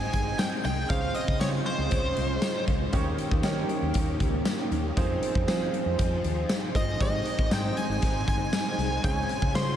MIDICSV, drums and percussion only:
0, 0, Header, 1, 2, 480
1, 0, Start_track
1, 0, Key_signature, -4, "major"
1, 0, Tempo, 508475
1, 851, Time_signature, 4, 2, 24, 8
1, 9217, End_track
2, 0, Start_track
2, 0, Title_t, "Drums"
2, 127, Note_on_c, 9, 42, 80
2, 129, Note_on_c, 9, 36, 87
2, 221, Note_off_c, 9, 42, 0
2, 223, Note_off_c, 9, 36, 0
2, 368, Note_on_c, 9, 38, 117
2, 368, Note_on_c, 9, 54, 80
2, 369, Note_on_c, 9, 42, 90
2, 462, Note_off_c, 9, 38, 0
2, 462, Note_off_c, 9, 54, 0
2, 463, Note_off_c, 9, 42, 0
2, 611, Note_on_c, 9, 42, 60
2, 705, Note_off_c, 9, 42, 0
2, 848, Note_on_c, 9, 42, 103
2, 849, Note_on_c, 9, 36, 107
2, 943, Note_off_c, 9, 42, 0
2, 944, Note_off_c, 9, 36, 0
2, 1086, Note_on_c, 9, 42, 76
2, 1180, Note_off_c, 9, 42, 0
2, 1210, Note_on_c, 9, 36, 101
2, 1305, Note_off_c, 9, 36, 0
2, 1328, Note_on_c, 9, 54, 64
2, 1331, Note_on_c, 9, 38, 117
2, 1331, Note_on_c, 9, 42, 95
2, 1423, Note_off_c, 9, 54, 0
2, 1425, Note_off_c, 9, 38, 0
2, 1426, Note_off_c, 9, 42, 0
2, 1570, Note_on_c, 9, 42, 62
2, 1665, Note_off_c, 9, 42, 0
2, 1804, Note_on_c, 9, 42, 120
2, 1811, Note_on_c, 9, 36, 101
2, 1899, Note_off_c, 9, 42, 0
2, 1906, Note_off_c, 9, 36, 0
2, 2045, Note_on_c, 9, 42, 80
2, 2140, Note_off_c, 9, 42, 0
2, 2283, Note_on_c, 9, 38, 116
2, 2283, Note_on_c, 9, 54, 80
2, 2284, Note_on_c, 9, 42, 90
2, 2378, Note_off_c, 9, 38, 0
2, 2378, Note_off_c, 9, 42, 0
2, 2378, Note_off_c, 9, 54, 0
2, 2528, Note_on_c, 9, 36, 98
2, 2528, Note_on_c, 9, 42, 60
2, 2622, Note_off_c, 9, 36, 0
2, 2622, Note_off_c, 9, 42, 0
2, 2764, Note_on_c, 9, 42, 100
2, 2768, Note_on_c, 9, 36, 111
2, 2859, Note_off_c, 9, 42, 0
2, 2863, Note_off_c, 9, 36, 0
2, 3007, Note_on_c, 9, 42, 80
2, 3101, Note_off_c, 9, 42, 0
2, 3129, Note_on_c, 9, 36, 103
2, 3223, Note_off_c, 9, 36, 0
2, 3239, Note_on_c, 9, 54, 69
2, 3242, Note_on_c, 9, 38, 114
2, 3242, Note_on_c, 9, 42, 90
2, 3334, Note_off_c, 9, 54, 0
2, 3336, Note_off_c, 9, 38, 0
2, 3337, Note_off_c, 9, 42, 0
2, 3486, Note_on_c, 9, 42, 60
2, 3580, Note_off_c, 9, 42, 0
2, 3720, Note_on_c, 9, 42, 126
2, 3730, Note_on_c, 9, 36, 98
2, 3814, Note_off_c, 9, 42, 0
2, 3825, Note_off_c, 9, 36, 0
2, 3967, Note_on_c, 9, 42, 81
2, 3968, Note_on_c, 9, 36, 91
2, 4061, Note_off_c, 9, 42, 0
2, 4063, Note_off_c, 9, 36, 0
2, 4205, Note_on_c, 9, 38, 124
2, 4205, Note_on_c, 9, 54, 78
2, 4206, Note_on_c, 9, 42, 94
2, 4299, Note_off_c, 9, 38, 0
2, 4299, Note_off_c, 9, 54, 0
2, 4300, Note_off_c, 9, 42, 0
2, 4454, Note_on_c, 9, 42, 60
2, 4548, Note_off_c, 9, 42, 0
2, 4692, Note_on_c, 9, 36, 111
2, 4693, Note_on_c, 9, 42, 105
2, 4786, Note_off_c, 9, 36, 0
2, 4788, Note_off_c, 9, 42, 0
2, 4934, Note_on_c, 9, 42, 84
2, 5028, Note_off_c, 9, 42, 0
2, 5054, Note_on_c, 9, 36, 105
2, 5148, Note_off_c, 9, 36, 0
2, 5173, Note_on_c, 9, 54, 66
2, 5175, Note_on_c, 9, 38, 112
2, 5176, Note_on_c, 9, 42, 93
2, 5267, Note_off_c, 9, 54, 0
2, 5270, Note_off_c, 9, 38, 0
2, 5270, Note_off_c, 9, 42, 0
2, 5417, Note_on_c, 9, 42, 63
2, 5512, Note_off_c, 9, 42, 0
2, 5654, Note_on_c, 9, 42, 127
2, 5656, Note_on_c, 9, 36, 100
2, 5748, Note_off_c, 9, 42, 0
2, 5751, Note_off_c, 9, 36, 0
2, 5894, Note_on_c, 9, 42, 77
2, 5989, Note_off_c, 9, 42, 0
2, 6130, Note_on_c, 9, 54, 74
2, 6131, Note_on_c, 9, 38, 120
2, 6131, Note_on_c, 9, 42, 89
2, 6225, Note_off_c, 9, 38, 0
2, 6225, Note_off_c, 9, 54, 0
2, 6226, Note_off_c, 9, 42, 0
2, 6372, Note_on_c, 9, 36, 99
2, 6379, Note_on_c, 9, 42, 63
2, 6466, Note_off_c, 9, 36, 0
2, 6473, Note_off_c, 9, 42, 0
2, 6613, Note_on_c, 9, 36, 108
2, 6614, Note_on_c, 9, 42, 97
2, 6707, Note_off_c, 9, 36, 0
2, 6708, Note_off_c, 9, 42, 0
2, 6849, Note_on_c, 9, 42, 79
2, 6943, Note_off_c, 9, 42, 0
2, 6974, Note_on_c, 9, 36, 105
2, 7068, Note_off_c, 9, 36, 0
2, 7090, Note_on_c, 9, 54, 67
2, 7093, Note_on_c, 9, 38, 112
2, 7093, Note_on_c, 9, 42, 90
2, 7185, Note_off_c, 9, 54, 0
2, 7188, Note_off_c, 9, 38, 0
2, 7188, Note_off_c, 9, 42, 0
2, 7335, Note_on_c, 9, 42, 67
2, 7430, Note_off_c, 9, 42, 0
2, 7572, Note_on_c, 9, 42, 122
2, 7577, Note_on_c, 9, 36, 98
2, 7667, Note_off_c, 9, 42, 0
2, 7671, Note_off_c, 9, 36, 0
2, 7814, Note_on_c, 9, 36, 95
2, 7817, Note_on_c, 9, 42, 75
2, 7908, Note_off_c, 9, 36, 0
2, 7911, Note_off_c, 9, 42, 0
2, 8051, Note_on_c, 9, 38, 116
2, 8051, Note_on_c, 9, 42, 95
2, 8051, Note_on_c, 9, 54, 79
2, 8145, Note_off_c, 9, 38, 0
2, 8145, Note_off_c, 9, 54, 0
2, 8146, Note_off_c, 9, 42, 0
2, 8296, Note_on_c, 9, 42, 63
2, 8390, Note_off_c, 9, 42, 0
2, 8534, Note_on_c, 9, 36, 113
2, 8534, Note_on_c, 9, 42, 106
2, 8628, Note_off_c, 9, 36, 0
2, 8629, Note_off_c, 9, 42, 0
2, 8772, Note_on_c, 9, 42, 79
2, 8867, Note_off_c, 9, 42, 0
2, 8894, Note_on_c, 9, 36, 101
2, 8989, Note_off_c, 9, 36, 0
2, 9016, Note_on_c, 9, 54, 67
2, 9019, Note_on_c, 9, 38, 109
2, 9019, Note_on_c, 9, 42, 96
2, 9110, Note_off_c, 9, 54, 0
2, 9113, Note_off_c, 9, 38, 0
2, 9113, Note_off_c, 9, 42, 0
2, 9217, End_track
0, 0, End_of_file